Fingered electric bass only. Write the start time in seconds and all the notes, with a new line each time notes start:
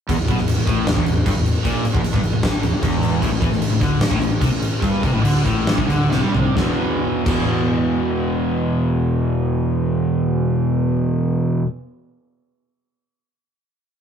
0.09 E1
0.19 E1
0.28 B1
0.38 E1
0.58 E1
0.67 A1
0.87 E1
0.97 E1
1.07 E1
1.26 G1
1.36 E1
1.65 A#1
1.85 muted fingered electric bass stroke
1.95 E1
2.05 E1
2.14 G1
2.23 E1
2.33 E1
2.43 muted fingered electric bass stroke
2.53 muted fingered electric bass stroke
2.63 E1
2.72 E1
2.82 E1
3.22 A1
3.32 A1
3.42 E2
3.52 A1
3.71 A1
3.81 D2
4.01 A1
4.11 A1
4.20 A1
4.41 C2
4.51 A1
4.82 G1
5.03 C2
5.14 A1
5.24 D2
5.45 A1
5.78 C2
5.89 D2
6.12 C2
6.22 G2
6.34 C2
6.57 E1
7.26 E1